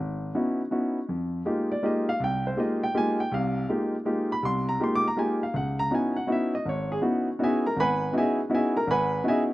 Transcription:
0.00 G#1
0.35 B3 C#4 D#4 E4 F#4
0.71 B3 C#4 D#4 E4 F#4
1.09 F2
1.45 G#3 A#3 D#4 F4 G4
1.72 D5
1.83 G#3 A#3 D#4 F4 G4 D#5
2.09 F5
2.20 C2 G5
2.47 C5
2.57 G#3 A#3 D#4 F4 G4 D#5
2.83 G5
2.94 G#3 A#3 D#4 F4 G4 G#5
3.20 G5
3.32 C2 C3 F5
3.69 G#3 A#3 D#4 F4 G4
4.05 G#3 A#3 D#4 F4 G4
4.32 B5
4.43 C2 C3 C6
4.69 A#5
4.80 G#3 A#3 D#4 F4 G4 C6
4.95 D6
5.08 A#5
5.16 G#3 A#3 D#4 F4 G4 G#5
5.43 F5
5.54 C#2 F#5
5.79 A#5
5.91 B3 C#4 D#4 E4 F#4 G#5
6.16 F#5
6.27 B3 C#4 D#4 E4 F#4
6.32 E5
6.55 D#5
6.65 G#1 C#5
6.92 G#4
7.02 B3 C#4 D#4 E4 F#4
7.39 B3 C#4 D#4 E4 F#4
7.43 G#4 D#5 E5 G#5
7.67 A#4 A#5
7.76 G#1 B5
7.80 B4 F#5 G#5
8.13 B3 C#4 D#4 E4 F#4
8.18 G#4 D#5 E5 G#5
8.50 B3 C#4 D#4 E4 F#4
8.55 G#4 D#5 E5 G#5
8.77 A#4 A#5
8.87 G#1 F#5 G#5 B5
8.91 B4
9.24 B3 C#4 D#4 E4 F#4
9.28 G#4 D#5 E5 G#5

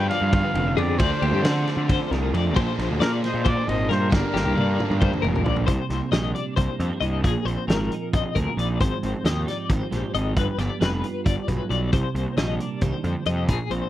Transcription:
Already playing: G2 D3 F3 B3 D4 G#4 B4
0.09 F4 D5 F5, snare, ride
0.21 G2
0.33 D3 B4, kick, ride
0.54 F1 D4, ride
0.68 F4
0.77 F2 B3 G#4 D5, ride
0.98 D2 D3 F3 A3 C5 D5, kick, ride
1.03 D4
1.22 D2 A#3 G4, ride
1.32 G2 C4
1.44 D3 G#4 D5, snare, ride
1.67 F4, snare, ride
1.77 D3
1.89 C5, kick, ride
2.11 C2 D4 A#4, snare, ride
2.23 F4
2.34 F2 C4 D5, ride
2.55 A#1 A#2 F3 G#3 C5, kick, ride
2.59 D4
2.79 A#1 A#3, snare, ride
2.90 D2
3.00 A#2 G#4 A#4 D5, snare, ride
3.22 C5 D#5, snare, ride
3.34 A#2
3.45 A#2 C5 D5, kick, ride
3.68 G#1 D#5, ride
3.89 G2 A#3 A#4 C5, snare, ride
4.11 G1 G2 D3 G3 A#3 A#4 D5, kick, snare
4.15 D4
4.34 G1 A#3 G4, snare
4.45 C2
4.55 G2 D5, high tom
4.60 F4
4.80 F4, mid tom
4.90 G2, mid tom
5.01 G2 C5, kick, mid tom
5.13 mid tom
5.22 F1 G#2 A#4, mid tom
5.36 floor tom
5.44 A#1 A#2 D5, floor tom
5.56 floor tom
5.67 C2 C3 C5, kick, closed hi-hat
5.90 C2 A#3, snare, closed hi-hat
6.12 A#1 G3 G4 D#5, snare, closed hi-hat
6.25 A#4
6.35 D4 D5, closed hi-hat
6.56 C2 A#3 C5, kick, closed hi-hat
6.79 F2 G2 G4, closed hi-hat
6.93 A#4
7.01 C2 D#5, closed hi-hat
7.05 D4
7.24 A#1 A#2 G#4, kick, closed hi-hat
7.45 A#1 C4 C5, closed hi-hat
7.68 G#1 F3 G#4 A#4, snare, closed hi-hat
7.92 D#4, closed hi-hat
8.13 A#1 C4 D#5, kick, closed hi-hat
8.35 D2 A#2 G#4 A#4, kick, closed hi-hat
8.57 A#1 D#4 D5, closed hi-hat
8.81 G#1 G#2 C5, kick, closed hi-hat
9.03 G#1 C4, closed hi-hat
9.24 D#2 F3 G4 D#5, snare, closed hi-hat
9.47 D#4 D5, snare, closed hi-hat
9.69 G#1 C4 C5, kick, closed hi-hat
9.90 A#1 G#2 G4, snare, closed hi-hat
10.14 G#1 D#4 D#5, closed hi-hat
10.34 G1 G2 B4, kick, closed hi-hat
10.58 G1 B3 D5, snare, closed hi-hat
10.79 F1 G3 B4, snare, closed hi-hat
11.04 F4, closed hi-hat
11.26 G1 G2 D5, kick, closed hi-hat
11.48 B1 G#2 B4, kick, closed hi-hat
11.70 B1 B2 D5, closed hi-hat
11.93 C2 C3 C5, kick, closed hi-hat
12.15 C2 A#3, closed hi-hat
12.37 A#1 G3 G4 D#5, snare, closed hi-hat
12.50 A#4
12.60 D4 D5, closed hi-hat
12.81 C2 D#3 C5, kick, closed hi-hat
13.04 F2 D3, closed hi-hat
13.25 F2 C3 D#5, closed hi-hat
13.48 A#1 A#2 G#4, kick, closed hi-hat
13.70 A#1 C4 C5, closed hi-hat

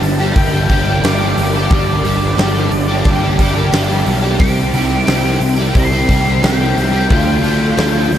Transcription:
Already playing: G2 D3
0.02 G1, muted overdriven electric guitar stroke, snare, open hi-hat
0.19 A#3 D4 G4
0.23 G3
0.36 G1 G5, kick, open hi-hat
0.52 G3 A#3 D4 G4
0.69 G1 G3 A#3 D4, kick, open hi-hat
0.73 G4
0.86 A#3 D4 G4
0.90 G3
1.02 G1 G2 D3 G3 A#3 D4 G4 D5, snare, open hi-hat
1.20 G3 A#3 D4 G4
1.38 G1, open hi-hat
1.54 G3 A#3 D4 G4
1.70 G1 G2 D3 G3 A#3 D4 G4 D5, kick, open hi-hat
2.03 G1 G3 A#3 D4 G4, open hi-hat
2.37 G1 G2 D3 G3 A#3 D4 G4, snare, open hi-hat
2.54 G3 A#3 D4 G4
2.71 G1, muted overdriven electric guitar stroke, open hi-hat
2.88 G3 A#3 D4 G4
3.05 G1, kick, open hi-hat
3.22 G3 A#3 D4 G4
3.39 G1 G3 A#3 D4 G4, kick, open hi-hat
3.54 G3 A#3 D4 G4
3.71 G1 G2 D3 G3 A#3 D4 G4, snare, open hi-hat
3.87 G3 A#3 D4 G4
4.06 B1, open hi-hat
4.21 G3 A#3 D4 G4
4.38 C2 C3 D#3 G3 C4 G4 D6, kick, open hi-hat
4.73 C2 D#3 G3 C4 G4, open hi-hat
5.05 C2 C3 D#3 G3 C4 G4, snare, open hi-hat
5.24 G3 C4 G4
5.40 C2, muted overdriven electric guitar stroke, open hi-hat
5.56 G3 C4 G4
5.75 C2, kick, open hi-hat
5.79 C6
5.92 G3 C4 G4
6.07 C2 D#3 G3 C4 G4, kick, open hi-hat
6.25 G3 C4 G4
6.41 C2 C3 D#3 G3 C4 G4, snare, open hi-hat
6.46 G5
6.58 G3 C4 G4
6.77 C2, open hi-hat
6.92 G3 C4 G4
7.09 D2 D3 A3 D4 F4 G5, kick, open hi-hat
7.42 D2 D3 A3 D4 F4, open hi-hat
7.76 D2 D3 A3 D4 F4, snare, open hi-hat
7.93 D4 F4
7.97 A3
8.10 D2, muted overdriven electric guitar stroke, snare, open hi-hat

